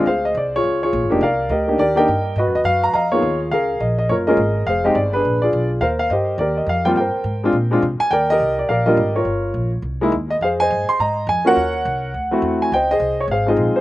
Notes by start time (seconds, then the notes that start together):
0.06 D2 G#4 C5 F5
0.25 D#5
0.35 C2 D5
0.56 F4 G#4 C#5
0.64 C#2
0.83 F4 G#4 C#5
0.93 A#1
1.03 G#1
1.10 F1 A#3 D4 D#4 G4
1.21 C2 A#4 D5 F5
1.49 D2 G4 A#4 D#5
1.68 A#3 D4 D#4 G4
1.78 D#2 G4 A#4 D5
1.96 A#3 D4 D#4 G4 A#4 D#5 G5
2.08 G2
2.36 G#2 F#4 B4 D#5
2.47 F#2
2.55 D#2 D#5
2.64 F#2 F5
2.83 A#5
2.93 F2 D#5 F5 A#5
3.12 A#3 B3 D#4 F4 G#4 C#5
3.22 D#2
3.51 C#2 G#4 A#4 F5
3.80 A#1 D#5
3.99 D#5
4.09 F#1 F4 A#4 C#5
4.27 G#3 A#3 C#4 F4 G#4 A#4 D#5
4.37 G#1
4.66 F1 G#4 C5 F5
4.84 G#3 C4 D#4 G4 D#5
4.95 G1 D5
5.13 D4 G#4 B4
5.25 A#1
5.42 F4 G#4 D5
5.53 B1
5.81 D#2 A#4 C5 F5
5.99 F5
6.10 G2 G4 C5 D#5
6.38 D#2 G4 A#4 D5
6.57 D#5
6.66 F2 F5
6.85 G3 A#3 C4 F4 G5
6.96 G2 G5
7.00 A#4 C5
7.14 muted upright bass stroke
7.24 G#2
7.43 G#3 C4 D4 F4
7.53 A#2
7.71 G#3 C4 D4 F4
7.82 C3
8.00 G#5, muted upright bass stroke
8.11 D#2 A#4 D5 G5
8.30 G4 A#4 D#5
8.40 C2
8.59 D5
8.69 A#1 A#4 D5 F5
8.86 G3 A#3 D4 F4 G4 A#4 D#5
8.97 G#1
9.16 F4 A#4 C#5
9.25 G1
9.54 A#1
9.82 C2
10.01 G#3 A#3 D#4 E4
10.12 D#2
10.30 D#5
10.41 F2 G#4 C5 F5
10.60 C5 D#5 G#5
10.70 G2
10.88 C6, muted upright bass stroke
10.99 G#2 D#5 A#5
11.27 F2 G#5
11.45 A#3 C#4 F4 F#4 A#4 C#5 F#5
11.56 D#2
11.85 C2
12.14 D2
12.31 A3 C4 E4 F#4
12.42 E2
12.62 G#5
12.72 C#2 C5 D#5 G5
12.91 G#4 C5 D#5
13.00 C2
13.20 C#5
13.28 G#1 F5
13.32 G#4 C5
13.46 G#3 C4 D#4 F4 G#4 C5 D#5
13.56 A#1
13.75 D#4 G#4 C5, muted upright bass stroke